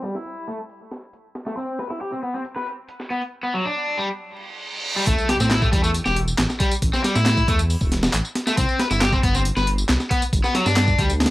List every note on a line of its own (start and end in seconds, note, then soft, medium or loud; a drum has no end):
0.04 0.14 G3 medium
0.04 snare medium
0.04 closed hi-hat medium
0.15 0.47 E4 medium
0.15 snare soft
0.26 closed hi-hat medium
0.47 0.58 A3 medium
0.47 closed hi-hat medium
0.59 closed hi-hat soft
0.69 open hi-hat medium
0.91 snare soft
0.91 closed hi-hat medium
1.13 closed hi-hat medium
1.35 snare soft
1.35 closed hi-hat medium
1.46 1.56 A3 medium
1.46 snare medium
1.57 1.78 C4 medium
1.57 closed hi-hat medium
1.79 1.85 B4 medium
1.79 snare medium
1.79 closed hi-hat medium
1.90 2.00 E4 medium
1.90 snare soft
2.01 2.11 G4 medium
2.01 closed hi-hat medium
2.12 2.18 C4 medium
2.23 2.33 B3 medium
2.23 closed hi-hat medium
2.34 2.40 C4 medium
2.45 closed hi-hat medium
2.56 2.65 B4 medium
2.56 snare soft
2.67 closed hi-hat medium
2.89 closed hi-hat medium
3.00 snare soft
3.10 3.20 B3 medium
3.10 closed hi-hat medium
3.21 closed hi-hat soft
3.43 3.53 B3 medium
3.54 3.65 F#3 medium
3.65 3.97 D4 medium
3.97 4.08 G3 medium
4.19 reverse cymbal medium
4.96 5.06 G3 medium
5.07 5.15 A1 medium
5.07 5.28 A3 medium
5.07 kick loud
5.07 closed hi-hat medium
5.07 tambourine medium
5.07 impact medium
5.18 tambourine soft
5.29 5.35 G4 loud
5.29 snare medium
5.29 closed hi-hat medium
5.40 5.68 A2 medium
5.40 5.50 C4 medium
5.40 snare medium
5.40 tambourine medium
5.50 5.61 E4 medium
5.50 snare loud
5.50 clap loud
5.50 closed hi-hat medium
5.50 tambourine medium
5.61 5.68 A3 loud
5.61 kick loud
5.61 tambourine soft
5.72 6.01 E2 medium
5.72 5.82 G3 loud
5.72 kick loud
5.72 closed hi-hat medium
5.83 5.89 A3 medium
5.83 tambourine medium
5.94 closed hi-hat medium
5.94 tambourine medium
6.05 6.34 E1 medium
6.05 6.15 G4 medium
6.05 snare soft
6.05 tambourine soft
6.16 closed hi-hat medium
6.28 tambourine medium
6.38 6.47 A1 loud
6.38 snare loud
6.38 clap loud
6.38 closed hi-hat medium
6.38 tambourine medium
6.50 snare soft
6.50 tambourine soft
6.60 6.70 G3 loud
6.60 kick loud
6.60 closed hi-hat medium
6.71 closed hi-hat soft
6.71 tambourine medium
6.82 6.90 A1 loud
6.82 kick loud
6.82 closed hi-hat medium
6.82 tambourine medium
6.93 7.03 C4 medium
6.93 snare soft
6.93 tambourine soft
7.04 7.15 G3 medium
7.04 snare medium
7.04 closed hi-hat medium
7.15 7.43 A2 medium
7.15 7.47 E4 loud
7.15 snare soft
7.15 tambourine medium
7.26 snare loud
7.26 clap loud
7.26 closed hi-hat medium
7.26 tambourine medium
7.37 kick loud
7.37 tambourine soft
7.48 7.76 E2 medium
7.48 7.58 A3 medium
7.48 kick loud
7.48 closed hi-hat medium
7.59 closed hi-hat soft
7.59 tambourine medium
7.70 open hi-hat medium
7.70 tambourine medium
7.81 8.09 E1 medium
7.81 kick loud
7.81 tambourine soft
7.92 snare soft
7.92 closed hi-hat medium
8.03 snare loud
8.03 tambourine medium
8.14 8.22 A1 loud
8.14 clap loud
8.14 closed hi-hat medium
8.14 tambourine medium
8.25 tambourine soft
8.35 snare soft
8.35 closed hi-hat medium
8.47 8.57 A3 medium
8.47 snare medium
8.47 tambourine medium
8.57 8.66 C2 loud
8.57 8.79 C4 medium
8.57 kick loud
8.57 closed hi-hat medium
8.57 tambourine medium
8.69 tambourine soft
8.79 8.86 B4 loud
8.79 snare medium
8.79 closed hi-hat medium
8.91 9.19 G1 medium
8.91 9.00 E4 medium
8.91 snare medium
8.91 tambourine medium
9.01 9.12 G4 medium
9.01 snare loud
9.01 clap loud
9.01 closed hi-hat medium
9.01 tambourine medium
9.13 9.18 C4 loud
9.13 kick loud
9.13 tambourine soft
9.23 9.51 G1 loud
9.23 9.33 B3 loud
9.23 kick loud
9.23 closed hi-hat medium
9.35 9.40 C4 medium
9.35 tambourine medium
9.45 closed hi-hat medium
9.45 tambourine medium
9.57 9.84 G1 medium
9.57 9.66 B4 medium
9.57 snare soft
9.57 tambourine soft
9.67 closed hi-hat medium
9.78 tambourine medium
9.89 9.97 C2 medium
9.89 snare loud
9.89 clap loud
9.89 closed hi-hat medium
9.89 tambourine medium
10.00 snare soft
10.00 tambourine soft
10.10 10.21 B3 loud
10.10 kick medium
10.10 closed hi-hat medium
10.22 closed hi-hat soft
10.22 tambourine medium
10.33 10.41 G1 loud
10.33 kick loud
10.33 closed hi-hat medium
10.33 tambourine medium
10.44 10.53 B3 medium
10.44 snare soft
10.44 tambourine soft
10.55 10.65 F#3 medium
10.55 snare medium
10.55 closed hi-hat medium
10.66 10.94 G2 medium
10.66 10.97 D4 loud
10.66 snare soft
10.66 tambourine medium
10.76 snare loud
10.76 clap loud
10.76 closed hi-hat medium
10.76 tambourine medium
10.88 kick loud
10.88 tambourine soft
10.98 11.27 D2 loud
10.98 11.09 G3 medium
10.98 kick medium
10.98 closed hi-hat medium
11.10 closed hi-hat soft
11.10 tambourine medium
11.20 snare medium
11.20 closed hi-hat medium
11.20 tambourine medium
11.26 snare medium
11.26 closed hi-hat medium